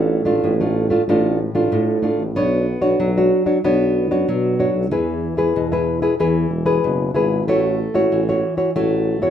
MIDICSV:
0, 0, Header, 1, 3, 480
1, 0, Start_track
1, 0, Key_signature, 3, "major"
1, 0, Tempo, 641026
1, 1761, Time_signature, 4, 2, 24, 8
1, 6965, End_track
2, 0, Start_track
2, 0, Title_t, "Nylon-string guitar"
2, 0, Program_c, 0, 24
2, 0, Note_on_c, 0, 45, 54
2, 0, Note_on_c, 0, 57, 51
2, 0, Note_on_c, 0, 62, 53
2, 0, Note_on_c, 0, 65, 52
2, 169, Note_off_c, 0, 57, 0
2, 169, Note_off_c, 0, 62, 0
2, 169, Note_off_c, 0, 65, 0
2, 189, Note_on_c, 0, 57, 60
2, 193, Note_on_c, 0, 62, 62
2, 198, Note_on_c, 0, 65, 69
2, 301, Note_off_c, 0, 45, 0
2, 326, Note_on_c, 0, 45, 47
2, 397, Note_off_c, 0, 57, 0
2, 399, Note_off_c, 0, 62, 0
2, 401, Note_off_c, 0, 65, 0
2, 454, Note_on_c, 0, 57, 62
2, 455, Note_on_c, 0, 62, 55
2, 459, Note_on_c, 0, 65, 63
2, 649, Note_off_c, 0, 57, 0
2, 650, Note_off_c, 0, 62, 0
2, 652, Note_off_c, 0, 65, 0
2, 675, Note_on_c, 0, 57, 57
2, 682, Note_on_c, 0, 62, 65
2, 683, Note_on_c, 0, 65, 64
2, 760, Note_off_c, 0, 57, 0
2, 762, Note_off_c, 0, 62, 0
2, 764, Note_off_c, 0, 65, 0
2, 780, Note_off_c, 0, 45, 0
2, 815, Note_on_c, 0, 45, 55
2, 818, Note_on_c, 0, 57, 62
2, 820, Note_on_c, 0, 62, 56
2, 823, Note_on_c, 0, 65, 59
2, 1033, Note_off_c, 0, 57, 0
2, 1036, Note_off_c, 0, 62, 0
2, 1037, Note_off_c, 0, 65, 0
2, 1159, Note_on_c, 0, 57, 66
2, 1162, Note_on_c, 0, 62, 56
2, 1163, Note_on_c, 0, 65, 65
2, 1264, Note_off_c, 0, 45, 0
2, 1289, Note_on_c, 0, 45, 55
2, 1482, Note_off_c, 0, 57, 0
2, 1482, Note_off_c, 0, 62, 0
2, 1484, Note_off_c, 0, 65, 0
2, 1515, Note_on_c, 0, 57, 57
2, 1521, Note_on_c, 0, 62, 58
2, 1525, Note_on_c, 0, 65, 67
2, 1659, Note_off_c, 0, 57, 0
2, 1662, Note_off_c, 0, 62, 0
2, 1664, Note_off_c, 0, 65, 0
2, 1741, Note_off_c, 0, 45, 0
2, 1768, Note_on_c, 0, 59, 54
2, 1769, Note_on_c, 0, 62, 52
2, 1773, Note_on_c, 0, 66, 51
2, 1775, Note_on_c, 0, 73, 62
2, 1990, Note_off_c, 0, 62, 0
2, 1990, Note_off_c, 0, 66, 0
2, 1993, Note_off_c, 0, 73, 0
2, 2107, Note_on_c, 0, 62, 62
2, 2108, Note_on_c, 0, 66, 62
2, 2111, Note_on_c, 0, 73, 71
2, 2221, Note_off_c, 0, 59, 0
2, 2245, Note_on_c, 0, 54, 52
2, 2316, Note_off_c, 0, 62, 0
2, 2316, Note_off_c, 0, 66, 0
2, 2317, Note_off_c, 0, 73, 0
2, 2374, Note_on_c, 0, 62, 59
2, 2378, Note_on_c, 0, 66, 58
2, 2381, Note_on_c, 0, 73, 68
2, 2569, Note_off_c, 0, 62, 0
2, 2571, Note_off_c, 0, 66, 0
2, 2573, Note_off_c, 0, 73, 0
2, 2592, Note_on_c, 0, 62, 54
2, 2593, Note_on_c, 0, 66, 57
2, 2596, Note_on_c, 0, 73, 63
2, 2678, Note_off_c, 0, 62, 0
2, 2678, Note_off_c, 0, 66, 0
2, 2680, Note_off_c, 0, 73, 0
2, 2698, Note_off_c, 0, 54, 0
2, 2729, Note_on_c, 0, 59, 53
2, 2731, Note_on_c, 0, 62, 59
2, 2733, Note_on_c, 0, 66, 56
2, 2737, Note_on_c, 0, 73, 63
2, 3047, Note_off_c, 0, 62, 0
2, 3047, Note_off_c, 0, 66, 0
2, 3050, Note_off_c, 0, 73, 0
2, 3078, Note_on_c, 0, 62, 63
2, 3081, Note_on_c, 0, 66, 58
2, 3083, Note_on_c, 0, 73, 66
2, 3181, Note_off_c, 0, 59, 0
2, 3209, Note_on_c, 0, 54, 57
2, 3400, Note_off_c, 0, 62, 0
2, 3402, Note_off_c, 0, 66, 0
2, 3402, Note_off_c, 0, 73, 0
2, 3439, Note_on_c, 0, 62, 59
2, 3444, Note_on_c, 0, 66, 58
2, 3444, Note_on_c, 0, 73, 57
2, 3641, Note_off_c, 0, 62, 0
2, 3642, Note_off_c, 0, 73, 0
2, 3643, Note_off_c, 0, 66, 0
2, 3660, Note_off_c, 0, 54, 0
2, 3679, Note_on_c, 0, 52, 58
2, 3682, Note_on_c, 0, 64, 56
2, 3687, Note_on_c, 0, 68, 54
2, 3687, Note_on_c, 0, 71, 53
2, 4002, Note_off_c, 0, 64, 0
2, 4004, Note_off_c, 0, 68, 0
2, 4005, Note_off_c, 0, 71, 0
2, 4022, Note_on_c, 0, 64, 60
2, 4028, Note_on_c, 0, 68, 58
2, 4032, Note_on_c, 0, 71, 73
2, 4135, Note_off_c, 0, 52, 0
2, 4163, Note_on_c, 0, 47, 51
2, 4232, Note_off_c, 0, 64, 0
2, 4235, Note_off_c, 0, 68, 0
2, 4237, Note_off_c, 0, 71, 0
2, 4282, Note_on_c, 0, 64, 57
2, 4286, Note_on_c, 0, 68, 61
2, 4290, Note_on_c, 0, 71, 67
2, 4482, Note_off_c, 0, 64, 0
2, 4483, Note_off_c, 0, 68, 0
2, 4486, Note_off_c, 0, 71, 0
2, 4508, Note_on_c, 0, 64, 62
2, 4510, Note_on_c, 0, 68, 64
2, 4514, Note_on_c, 0, 71, 66
2, 4595, Note_off_c, 0, 64, 0
2, 4597, Note_off_c, 0, 68, 0
2, 4597, Note_off_c, 0, 71, 0
2, 4617, Note_off_c, 0, 47, 0
2, 4641, Note_on_c, 0, 52, 55
2, 4643, Note_on_c, 0, 64, 55
2, 4645, Note_on_c, 0, 68, 57
2, 4647, Note_on_c, 0, 71, 63
2, 4865, Note_off_c, 0, 68, 0
2, 4866, Note_off_c, 0, 64, 0
2, 4868, Note_off_c, 0, 71, 0
2, 4983, Note_on_c, 0, 64, 58
2, 4985, Note_on_c, 0, 68, 62
2, 4988, Note_on_c, 0, 71, 67
2, 5097, Note_off_c, 0, 52, 0
2, 5122, Note_on_c, 0, 47, 55
2, 5313, Note_off_c, 0, 64, 0
2, 5313, Note_off_c, 0, 68, 0
2, 5315, Note_off_c, 0, 71, 0
2, 5350, Note_on_c, 0, 64, 61
2, 5356, Note_on_c, 0, 68, 56
2, 5361, Note_on_c, 0, 71, 58
2, 5556, Note_off_c, 0, 64, 0
2, 5559, Note_off_c, 0, 68, 0
2, 5561, Note_off_c, 0, 71, 0
2, 5576, Note_off_c, 0, 47, 0
2, 5602, Note_on_c, 0, 57, 51
2, 5606, Note_on_c, 0, 64, 52
2, 5608, Note_on_c, 0, 66, 48
2, 5612, Note_on_c, 0, 73, 60
2, 5826, Note_off_c, 0, 64, 0
2, 5829, Note_off_c, 0, 66, 0
2, 5829, Note_off_c, 0, 73, 0
2, 5948, Note_on_c, 0, 64, 56
2, 5951, Note_on_c, 0, 66, 66
2, 5956, Note_on_c, 0, 73, 64
2, 6057, Note_off_c, 0, 57, 0
2, 6081, Note_on_c, 0, 52, 49
2, 6155, Note_off_c, 0, 64, 0
2, 6157, Note_off_c, 0, 66, 0
2, 6158, Note_off_c, 0, 73, 0
2, 6204, Note_on_c, 0, 64, 57
2, 6206, Note_on_c, 0, 66, 55
2, 6210, Note_on_c, 0, 73, 69
2, 6403, Note_off_c, 0, 66, 0
2, 6404, Note_off_c, 0, 64, 0
2, 6406, Note_off_c, 0, 73, 0
2, 6418, Note_on_c, 0, 64, 56
2, 6421, Note_on_c, 0, 66, 58
2, 6423, Note_on_c, 0, 73, 67
2, 6510, Note_off_c, 0, 64, 0
2, 6512, Note_off_c, 0, 66, 0
2, 6512, Note_off_c, 0, 73, 0
2, 6536, Note_off_c, 0, 52, 0
2, 6558, Note_on_c, 0, 57, 56
2, 6558, Note_on_c, 0, 64, 58
2, 6562, Note_on_c, 0, 66, 53
2, 6563, Note_on_c, 0, 73, 59
2, 6880, Note_off_c, 0, 64, 0
2, 6880, Note_off_c, 0, 66, 0
2, 6883, Note_off_c, 0, 73, 0
2, 6903, Note_on_c, 0, 64, 64
2, 6908, Note_on_c, 0, 66, 57
2, 6909, Note_on_c, 0, 73, 63
2, 6965, Note_off_c, 0, 57, 0
2, 6965, Note_off_c, 0, 64, 0
2, 6965, Note_off_c, 0, 66, 0
2, 6965, Note_off_c, 0, 73, 0
2, 6965, End_track
3, 0, Start_track
3, 0, Title_t, "Tuba"
3, 0, Program_c, 1, 58
3, 0, Note_on_c, 1, 33, 96
3, 147, Note_off_c, 1, 33, 0
3, 190, Note_on_c, 1, 33, 74
3, 297, Note_off_c, 1, 33, 0
3, 325, Note_on_c, 1, 33, 93
3, 731, Note_off_c, 1, 33, 0
3, 801, Note_on_c, 1, 33, 88
3, 1107, Note_off_c, 1, 33, 0
3, 1146, Note_on_c, 1, 33, 78
3, 1255, Note_off_c, 1, 33, 0
3, 1281, Note_on_c, 1, 45, 84
3, 1587, Note_off_c, 1, 45, 0
3, 1627, Note_on_c, 1, 33, 85
3, 1764, Note_on_c, 1, 35, 104
3, 1776, Note_off_c, 1, 33, 0
3, 2069, Note_off_c, 1, 35, 0
3, 2108, Note_on_c, 1, 35, 78
3, 2216, Note_off_c, 1, 35, 0
3, 2242, Note_on_c, 1, 35, 89
3, 2479, Note_off_c, 1, 35, 0
3, 2726, Note_on_c, 1, 35, 82
3, 3076, Note_on_c, 1, 42, 75
3, 3087, Note_off_c, 1, 35, 0
3, 3180, Note_off_c, 1, 42, 0
3, 3208, Note_on_c, 1, 47, 89
3, 3510, Note_off_c, 1, 47, 0
3, 3554, Note_on_c, 1, 35, 83
3, 3683, Note_on_c, 1, 40, 98
3, 3694, Note_off_c, 1, 35, 0
3, 3987, Note_off_c, 1, 40, 0
3, 4028, Note_on_c, 1, 40, 79
3, 4135, Note_off_c, 1, 40, 0
3, 4162, Note_on_c, 1, 40, 86
3, 4569, Note_off_c, 1, 40, 0
3, 4637, Note_on_c, 1, 40, 89
3, 4863, Note_off_c, 1, 40, 0
3, 4868, Note_on_c, 1, 28, 76
3, 5089, Note_off_c, 1, 28, 0
3, 5116, Note_on_c, 1, 30, 78
3, 5333, Note_off_c, 1, 30, 0
3, 5349, Note_on_c, 1, 32, 84
3, 5597, Note_on_c, 1, 33, 95
3, 5608, Note_off_c, 1, 32, 0
3, 5904, Note_off_c, 1, 33, 0
3, 5940, Note_on_c, 1, 33, 73
3, 6050, Note_off_c, 1, 33, 0
3, 6071, Note_on_c, 1, 33, 88
3, 6312, Note_off_c, 1, 33, 0
3, 6555, Note_on_c, 1, 33, 84
3, 6900, Note_on_c, 1, 40, 75
3, 6911, Note_off_c, 1, 33, 0
3, 6965, Note_off_c, 1, 40, 0
3, 6965, End_track
0, 0, End_of_file